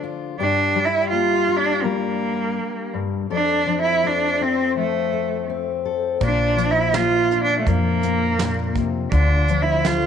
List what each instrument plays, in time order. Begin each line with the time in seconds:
Already playing: steel-string acoustic guitar D3 F3 A3 D4
0.03 steel-string acoustic guitar F4
0.39 steel-string acoustic guitar G2 G4, cello D4
0.76 steel-string acoustic guitar G3
0.85 cello E4
1.10 steel-string acoustic guitar A#3, cello F4
1.48 steel-string acoustic guitar D4
1.57 cello D4
1.82 steel-string acoustic guitar G3, cello A#3
2.94 steel-string acoustic guitar G2
3.30 steel-string acoustic guitar F2 A4, cello D4
3.66 steel-string acoustic guitar F3
3.82 cello E4
4.04 steel-string acoustic guitar A3, cello D4
4.41 steel-string acoustic guitar C4, cello C4
4.77 steel-string acoustic guitar F3, cello A3
5.13 steel-string acoustic guitar A3
5.50 steel-string acoustic guitar C4
5.85 steel-string acoustic guitar A4
6.20 upright bass A#1, steel-string acoustic guitar A#2 F4, cello D4, kick, closed hi-hat
6.57 steel-string acoustic guitar F3, closed hi-hat
6.71 cello E4
6.94 steel-string acoustic guitar A#3, cello F4, snare, closed hi-hat
7.31 steel-string acoustic guitar D4, closed hi-hat
7.44 cello D4
7.59 cello A3
7.67 upright bass F2, steel-string acoustic guitar F3, cello A#3, kick, closed hi-hat
8.03 steel-string acoustic guitar A#3, closed hi-hat
8.39 steel-string acoustic guitar A#2, snare, closed hi-hat
8.76 steel-string acoustic guitar C3, kick, closed hi-hat
9.12 upright bass D2, steel-string acoustic guitar D3 F4, cello D4, kick, closed hi-hat
9.48 steel-string acoustic guitar F3, closed hi-hat
9.62 cello E4
9.85 steel-string acoustic guitar A3, cello F4, snare, closed hi-hat